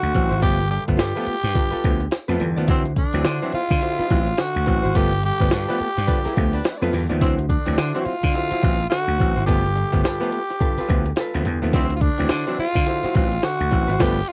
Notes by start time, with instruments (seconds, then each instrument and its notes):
Already playing: tenor saxophone F#4
0.03 slap bass D2, closed hi-hat
0.14 slap bass A1, clav E3 F#3 C4, kick, snare, closed hi-hat
0.29 slap bass G#1, clav F#3 C4, hollow-body jazz guitar E4 F#4 C5, closed hi-hat
0.40 slap bass G1, clav F3 A3 B3, hollow-body jazz guitar F4 A4 B4, tenor saxophone G4, kick, closed hi-hat
0.60 closed hi-hat
0.71 clav G2 D3, tenor saxophone G4, closed hi-hat
0.88 slap bass G1, clav F3 A3 B3, kick, closed hi-hat
0.97 slap bass G2, clav G2 D3, hollow-body jazz guitar F4 A4 B4, tenor saxophone G4, snare, closed hi-hat, tambourine
1.15 clav F3 A3 B3, hollow-body jazz guitar F4 A4 B4, closed hi-hat
1.26 clav A3 B3, muted slap bass stroke, closed hi-hat
1.44 slap bass G2, snare, closed hi-hat
1.54 clav G2 D3, hollow-body jazz guitar F4 A4 B4, kick, closed hi-hat
1.71 hollow-body jazz guitar F4 A4 B4, muted slap bass stroke, closed hi-hat
1.84 slap bass D2, clav F3 A3 B3, kick, closed hi-hat
2.00 clav A3 B3, closed hi-hat
2.11 snare, closed hi-hat, tambourine
2.28 slap bass F2, clav F3 A3 B3, hollow-body jazz guitar F4 A4 B4, closed hi-hat
2.40 slap bass E2, clav G2 D3, snare, closed hi-hat
2.56 slap bass D#2, clav F3 A3 B3, hollow-body jazz guitar F4 A4 D5, closed hi-hat
2.68 slap bass D2, clav E3 F#3 C4, tenor saxophone C4, hollow-body jazz guitar E4 F#4 C5, kick, closed hi-hat
2.86 closed hi-hat
2.96 clav D3, tenor saxophone D4, kick, closed hi-hat
3.13 slap bass D2, clav E3 F#3 C4, closed hi-hat
3.25 slap bass D3, clav D3, hollow-body jazz guitar E4 F#4 C5, snare, closed hi-hat, tambourine
3.42 clav E3 F#3 C4, hollow-body jazz guitar E4 F#4 C5, closed hi-hat
3.52 clav F#3 C4, tenor saxophone F4, muted slap bass stroke, closed hi-hat
3.70 slap bass D3, kick, snare, closed hi-hat
3.81 clav D3, hollow-body jazz guitar E4 F#4 C5, closed hi-hat
3.98 hollow-body jazz guitar E4 F#4 C5, muted slap bass stroke, closed hi-hat
4.10 slap bass A1, clav E3 F#3 C4, kick, closed hi-hat
4.27 clav F#3 C4, closed hi-hat
4.37 clav D3, tenor saxophone F#4, snare, closed hi-hat, tambourine
4.55 slap bass D2, closed hi-hat
4.66 slap bass A1, clav E3 F#3 C4, kick, snare, closed hi-hat
4.83 slap bass G#1, clav F#3 C4, hollow-body jazz guitar E4 F#4 C5, closed hi-hat
4.95 slap bass G1, clav F3 A3 B3, hollow-body jazz guitar F4 A4 B4, tenor saxophone G4, kick, closed hi-hat
5.12 closed hi-hat
5.23 clav G2 D3, tenor saxophone G4, closed hi-hat
5.39 slap bass G1, horn section F3 B3 D4 B4, clav F3 A3 B3, kick, closed hi-hat
5.51 slap bass G2, clav G2 D3, hollow-body jazz guitar F4 A4 B4, tenor saxophone G4, snare, closed hi-hat, tambourine
5.68 horn section F3 B3 D4 B4, clav F3 A3 B3, hollow-body jazz guitar F4 A4 B4, closed hi-hat
5.79 clav A3 B3, muted slap bass stroke, closed hi-hat
5.97 slap bass G2, snare, closed hi-hat
6.07 clav G2 D3, horn section F3 B3 D4 B4, hollow-body jazz guitar F4 A4 B4, kick, closed hi-hat
6.25 hollow-body jazz guitar F4 A4 B4, muted slap bass stroke, closed hi-hat
6.37 slap bass D2, clav F3 A3 B3, kick, closed hi-hat
6.53 horn section F3 B3 D4 B4, clav A3 B3, closed hi-hat
6.64 snare, closed hi-hat, tambourine
6.81 slap bass F2, clav F3 A3 B3, hollow-body jazz guitar F4 A4 B4, closed hi-hat
6.93 slap bass E2, clav G2 D3, snare, open hi-hat
7.09 slap bass D#2, clav F3 A3 B3, hollow-body jazz guitar F4 A4 D5, closed hi-hat
7.21 slap bass D2, clav E3 F#3 C4, tenor saxophone C4, hollow-body jazz guitar E4 F#4 C5, kick, closed hi-hat
7.39 closed hi-hat
7.49 clav D3, tenor saxophone D4, kick, closed hi-hat
7.66 slap bass D2, clav E3 F#3 C4, closed hi-hat
7.78 clav D3, slap bass D3, hollow-body jazz guitar E4 F#4 C5, snare, closed hi-hat, tambourine
7.95 clav E3 F#3 C4, hollow-body jazz guitar E4 F#4 C5, closed hi-hat
8.01 tenor saxophone F#4
8.05 clav F#3 C4, tenor saxophone F4, muted slap bass stroke, closed hi-hat
8.23 slap bass D3, kick, snare, closed hi-hat
8.34 clav D3, hollow-body jazz guitar E4 F#4 C5, closed hi-hat
8.51 hollow-body jazz guitar E4 F#4 C5, muted slap bass stroke, closed hi-hat
8.62 slap bass A1, clav E3 F#3 C4, kick, closed hi-hat
8.79 clav F#3 C4, closed hi-hat
8.90 clav D3, tenor saxophone F#4, snare, closed hi-hat, tambourine
9.08 slap bass D2, closed hi-hat
9.19 slap bass A1, clav E3 F#3 C4, kick, snare, closed hi-hat
9.35 slap bass G#1, clav F#3 C4, hollow-body jazz guitar E4 F#4 C5, closed hi-hat
9.46 slap bass G1, clav F3 A3 B3, hollow-body jazz guitar F4 A4 B4, tenor saxophone G4, kick, closed hi-hat
9.66 closed hi-hat
9.75 clav G2 D3, closed hi-hat
9.92 slap bass G1, clav F3 A3 B3, kick, closed hi-hat
10.03 clav G2 D3, hollow-body jazz guitar F4 A4 B4, tenor saxophone G4, snare, closed hi-hat, tambourine
10.20 clav F3 A3 B3, hollow-body jazz guitar F4 A4 B4, closed hi-hat
10.32 clav A3 B3, closed hi-hat
10.50 snare, closed hi-hat
10.60 clav G2 D3, hollow-body jazz guitar F4 A4 B4, kick, closed hi-hat
10.78 hollow-body jazz guitar F4 A4 B4, muted slap bass stroke, closed hi-hat
10.88 slap bass D2, clav F3 A3 B3, kick, closed hi-hat
11.06 closed hi-hat
11.16 hollow-body jazz guitar F4 A4, snare, closed hi-hat, tambourine
11.20 hollow-body jazz guitar B4
11.34 slap bass D2, clav F3 A3 B3, closed hi-hat
11.45 slap bass E2, clav G2 D3, snare, closed hi-hat
11.62 slap bass D#2, clav F3 A3 B3, closed hi-hat
11.73 slap bass D2, clav E3 F#3 C4, tenor saxophone C4, hollow-body jazz guitar E4 F#4 C5, kick, closed hi-hat
11.90 closed hi-hat
11.96 tenor saxophone F4
12.01 clav D3, tenor saxophone D4, kick, closed hi-hat
12.18 slap bass D2, clav E3 F#3 C4, closed hi-hat
12.29 slap bass D3, clav D3, hollow-body jazz guitar E4 F#4 C5, snare, closed hi-hat, tambourine
12.47 clav E3 F#3 C4, hollow-body jazz guitar E4 F#4 C5, closed hi-hat
12.57 clav F#3 C4, tenor saxophone F4, muted slap bass stroke, closed hi-hat
12.74 slap bass D3, kick, snare, closed hi-hat
12.86 clav D3, hollow-body jazz guitar E4 F#4 C5, closed hi-hat
13.03 hollow-body jazz guitar E4 F#4 C5, muted slap bass stroke, closed hi-hat
13.14 slap bass A1, clav E3 F#3 C4, tenor saxophone F4, kick, closed hi-hat
13.32 clav F#3 C4, closed hi-hat
13.42 clav D3, tenor saxophone F#4, snare, closed hi-hat, tambourine
13.60 slap bass D2, closed hi-hat
13.71 slap bass A1, clav E3 F#3 C4, kick, snare, closed hi-hat
13.88 slap bass G#1, clav F#3 C4, hollow-body jazz guitar E4 F#4 C5, closed hi-hat
13.99 slap bass G1, clav F3 A3 B3, horn section F3 B3 D4 B4, hollow-body jazz guitar F4 A4 B4, tenor saxophone G4, kick, snare, crash
14.28 tenor saxophone F4